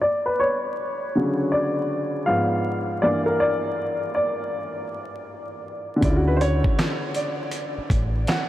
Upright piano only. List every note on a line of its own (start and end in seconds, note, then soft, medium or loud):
0.01 0.27 D5 medium
0.26 0.39 B4 medium
0.40 1.48 C#5 medium
1.15 2.24 C#3 medium
1.15 2.24 D3 medium
1.15 2.24 F#3 soft
1.52 2.29 D5 medium
2.26 2.99 G#2 medium
2.26 2.99 F3 soft
2.26 2.99 B3 medium
2.26 2.85 F5 medium
3.02 5.99 G2 medium
3.02 5.99 E3 soft
3.02 5.99 A#3 medium
3.02 3.25 D5 medium
3.26 3.39 A#4 medium
3.40 4.11 D5 loud
4.15 5.61 D5 medium
5.96 8.49 D3 medium
6.01 8.49 C#3 medium
6.06 8.49 E4 medium
6.10 6.15 F4 medium
6.16 8.49 F#4 medium